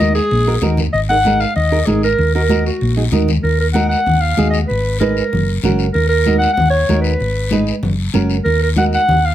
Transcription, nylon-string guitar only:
0.00 0.16 D#4 medium
0.00 0.16 F#4 medium
0.00 0.16 A#4 medium
0.47 0.52 D#4 medium
0.47 0.52 F#4 medium
0.47 0.53 A#4 medium
0.62 0.79 D#4 medium
0.62 0.79 F#4 medium
0.62 0.79 A#4 medium
1.09 1.15 D#4 medium
1.09 1.15 G#4 medium
1.09 1.15 A#4 medium
1.25 1.41 D#4 medium
1.25 1.42 G#4 medium
1.25 1.42 A#4 medium
1.72 1.77 D#4 medium
1.72 1.77 G#4 medium
1.72 1.77 A#4 medium
1.87 2.04 D#4 medium
1.87 2.04 G#4 medium
1.87 2.04 A#4 medium
2.35 2.40 D#4 medium
2.35 2.40 F#4 medium
2.35 2.40 A#4 medium
2.49 2.66 D#4 medium
2.49 2.66 F#4 medium
2.49 2.67 A#4 medium
2.96 3.02 D#4 medium
2.96 3.02 F#4 medium
2.96 3.03 G#4 medium
3.12 3.29 D#4 medium
3.12 3.29 F#4 medium
3.12 3.29 A#4 medium
3.75 3.97 D#4 medium
3.75 3.97 F#4 medium
3.75 3.97 A#4 medium
4.38 4.60 D#4 medium
4.38 4.60 F#4 medium
4.38 4.60 G#4 medium
5.00 5.22 D#4 medium
5.00 5.23 G#4 medium
5.00 5.23 B4 medium
5.64 5.85 C#4 medium
5.64 5.86 F#4 medium
5.64 5.86 A#4 medium
6.27 6.48 D#4 medium
6.27 6.48 F#4 medium
6.27 6.49 A#4 medium
6.89 7.11 D#4 medium
6.89 7.11 F#4 medium
6.89 7.11 A#4 medium
7.52 7.74 D#4 medium
7.52 7.74 G#4 medium
7.52 7.74 B4 medium
8.13 8.36 C#4 medium
8.13 8.36 F#4 medium
8.13 8.36 A#4 medium
8.77 8.99 D#4 medium
8.77 8.99 F#4 medium
8.77 8.99 A#4 medium

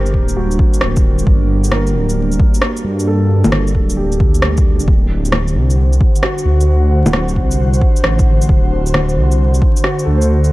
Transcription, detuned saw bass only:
0.00 0.15 G1 medium
0.14 0.58 D1 loud
0.82 1.26 D1 medium
1.27 1.96 G1 loud
1.94 2.38 D1 loud
2.85 3.43 G2 medium
3.45 3.76 G1 medium
3.75 4.21 D1 loud
4.20 4.81 D2 medium
4.80 4.87 D1 medium
4.87 5.56 D1 medium
5.55 5.99 C2 loud
6.45 7.04 D2 medium
7.05 7.38 D1 medium
7.36 7.80 C2 loud
8.03 8.48 A1 medium
8.49 9.18 D1 medium
9.16 9.60 C2 loud
10.07 10.52 D2 medium

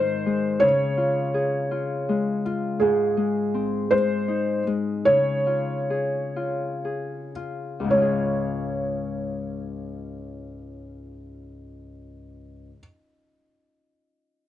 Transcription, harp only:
0.00 0.66 G#2 medium
0.00 0.66 D#3 soft
0.00 0.67 C4 soft
0.00 0.67 F4 soft
0.26 0.66 G#3 soft
0.61 2.86 C#3 medium
0.97 1.71 F4 soft
1.34 3.62 G#4 soft
1.71 2.45 F4 soft
2.09 2.86 G#3 soft
2.45 4.98 F4 soft
2.81 5.11 G#2 medium
3.17 3.90 G#3 soft
3.54 5.12 C4 soft
3.91 4.66 G#3 soft
4.28 6.98 D#4 soft
4.67 5.11 G#3 soft
5.06 7.88 C#3 medium
5.47 6.36 F4 soft
5.90 6.84 G#4 soft
6.36 7.35 F4 soft
6.85 8.01 G#4 soft
7.36 7.97 F4 soft
7.80 12.68 C#2 soft
7.84 12.72 G#2 soft
7.89 12.77 C#3 soft
7.93 12.81 G#3 soft
7.97 12.85 F4 soft
8.01 12.89 G#4 soft

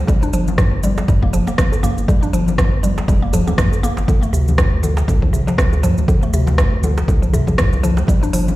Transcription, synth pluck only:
0.08 0.22 G3 medium
0.23 0.32 D4 medium
0.33 0.46 F3 loud
0.83 0.96 G3 medium
1.08 1.22 G3 medium
1.23 1.32 A#3 medium
1.33 1.46 F3 medium
1.48 1.57 A#3 medium
1.83 1.96 A#3 loud
2.08 2.22 G3 medium
2.22 2.32 D4 medium
2.33 2.46 F3 loud
2.83 2.96 G3 medium
3.08 3.22 G3 medium
3.22 3.32 A#3 medium
3.34 3.46 F3 loud
3.47 3.57 A#3 medium
3.83 3.96 A#3 loud
4.08 4.22 D3 medium
4.23 4.32 A3 medium
4.33 4.46 C3 loud
4.83 4.96 D3 medium
5.08 5.22 D3 medium
5.22 5.32 F3 medium
5.33 5.46 C3 loud
5.47 5.57 F3 medium
5.83 5.96 F3 loud
6.08 6.22 D3 medium
6.23 6.32 A3 medium
6.34 6.46 C3 loud
6.84 6.96 D3 medium
7.08 7.22 D3 medium
7.22 7.32 F3 medium
7.34 7.46 C3 loud
7.48 7.57 F3 medium
7.83 7.96 F3 loud
8.08 8.22 G3 medium
8.23 8.32 D4 medium
8.33 8.46 F3 loud

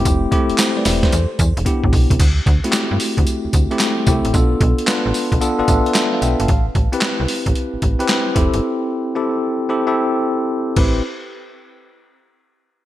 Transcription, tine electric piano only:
0.00 0.29 A3 medium
0.00 0.29 C4 medium
0.00 0.29 E4 medium
0.00 0.29 G4 loud
0.31 0.95 A3 loud
0.31 0.95 C4 medium
0.31 0.96 E4 medium
0.31 0.96 G4 loud
0.59 0.76 C5 medium
0.59 0.76 E5 medium
0.77 1.02 B4 medium
0.77 1.02 D5 medium
1.04 1.29 A4 medium
1.04 1.29 C5 medium
1.65 2.16 B3 medium
1.65 2.16 D4 medium
1.65 2.16 E4 medium
1.65 2.17 G4 loud
2.64 3.59 A3 loud
2.64 3.59 C4 medium
2.64 3.59 E4 medium
2.64 2.69 F#4 medium
2.71 3.63 G4 loud
3.71 4.04 A3 loud
3.71 4.05 C4 loud
3.71 4.05 E4 medium
3.71 4.05 G4 loud
4.07 4.32 A3 medium
4.07 4.32 C4 medium
4.07 4.32 E4 medium
4.07 4.33 G4 medium
4.33 4.84 B3 loud
4.33 4.84 D4 medium
4.33 4.84 F4 medium
4.33 4.85 A4 loud
4.87 5.37 B3 loud
4.87 5.38 D4 medium
4.87 5.38 F4 medium
4.87 5.38 B4 loud
5.41 5.57 B3 loud
5.41 5.57 D4 medium
5.41 5.57 F4 medium
5.41 5.57 A4 loud
5.59 6.48 B3 loud
5.59 6.48 D4 loud
5.59 6.48 F4 medium
5.59 6.49 A4 loud
5.69 5.85 E5 medium
5.86 5.95 B4 medium
5.86 5.94 D5 medium
5.95 6.12 E5 medium
6.13 6.22 D5 medium
6.13 6.21 F5 medium
6.22 6.39 E5 medium
6.22 6.39 G5 medium
6.40 6.65 F5 medium
6.40 6.65 A5 medium
6.92 7.87 C4 loud
6.92 7.87 E4 medium
6.92 7.88 G4 loud
6.92 7.88 B4 loud
7.99 8.33 C4 loud
7.99 8.33 E4 medium
7.99 8.33 G4 medium
7.99 8.33 B4 loud
8.35 9.11 C4 loud
8.35 9.11 E4 medium
8.35 9.11 G4 medium
8.35 9.11 A4 medium
9.16 9.66 C4 loud
9.16 9.66 E4 medium
9.16 9.66 G4 loud
9.16 9.67 A4 loud
9.69 9.85 C4 loud
9.69 9.86 E4 medium
9.69 9.86 G4 medium
9.69 9.86 A4 loud
9.87 10.75 C4 loud
9.87 10.75 E4 loud
9.87 10.76 G4 loud
9.87 10.77 A4 loud
10.76 11.01 C4 medium
10.76 11.02 E4 medium
10.76 11.02 G4 medium
10.76 11.02 B4 medium

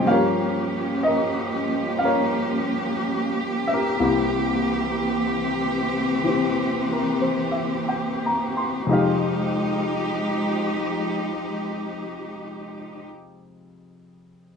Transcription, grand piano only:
0.00 3.98 G2 soft
0.00 3.99 F3 soft
0.05 3.99 A#3 soft
0.05 4.02 C#4 soft
0.05 1.04 F5 medium
0.11 3.72 G4 soft
0.11 1.06 A#4 medium
0.11 1.95 C#5 medium
1.03 2.03 A#4 soft
1.03 2.01 D#5 medium
1.99 3.73 F5 medium
2.04 3.72 A#4 medium
2.04 4.00 C#5 medium
3.67 7.47 E5 medium
3.74 4.00 G4 soft
3.74 6.91 A#4 medium
4.00 8.88 C2 soft
4.00 8.86 C3 soft
4.00 8.88 A#3 soft
4.00 8.88 E4 soft
4.00 6.26 G4 medium
6.24 8.87 E3 soft
6.24 8.88 C4 soft
6.24 8.88 G4 soft
6.93 7.29 A#4 soft
7.21 7.66 C5 soft
7.52 8.16 E5 soft
7.89 8.47 G5 soft
8.26 8.65 A#5 soft
8.57 9.05 C6 soft
8.87 13.04 F2 soft
8.87 13.04 C3 soft
8.87 13.05 G#3 soft
8.87 13.05 D#4 soft
8.87 13.06 G4 medium
8.93 13.05 F5 medium

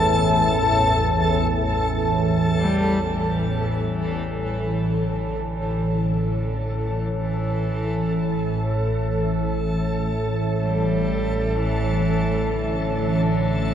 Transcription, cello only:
2.59 3.06 G3 medium
3.05 4.97 E3 medium
4.96 5.90 D3 medium
5.90 6.85 D3 medium
6.84 8.75 E3 medium
10.59 10.66 A3 medium
10.64 11.51 G3 medium
11.51 11.59 G3 medium
11.58 12.53 E3 medium
12.52 13.74 D3 medium

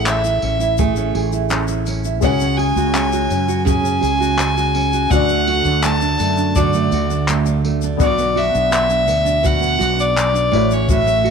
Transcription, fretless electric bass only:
0.00 0.39 A1 medium
0.43 1.11 A1 medium
1.15 2.23 A1 medium
2.23 2.73 C#2 medium
2.76 3.27 C#2 loud
3.31 3.99 F#2 medium
4.03 5.07 C#2 loud
5.11 5.61 D2 loud
5.65 6.15 D2 loud
6.20 6.88 F#2 medium
6.92 7.96 D2 loud
8.00 8.50 B1 loud
8.55 9.09 B1 loud
9.09 9.77 D2 medium
9.81 10.49 B1 loud
10.53 11.30 A1 medium

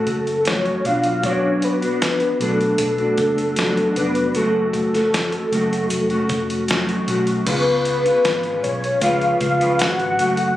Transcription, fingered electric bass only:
0.07 0.69 F#1 medium
0.85 1.94 B1 medium
2.40 2.71 B1 medium
2.79 3.10 B1 medium
3.18 3.81 F#1 medium
3.96 4.27 F1 medium
4.36 5.29 F#1 loud
5.52 5.83 F#1 medium
5.91 6.22 F1 medium
6.30 6.92 F1 medium
7.07 7.39 B1 medium
7.47 8.09 C#2 loud
8.25 8.56 G#1 medium
8.63 8.94 B1 medium
9.02 9.33 C#2 medium
9.41 9.82 C#2 medium
9.80 10.11 G#1 medium
10.19 10.57 F#1 medium

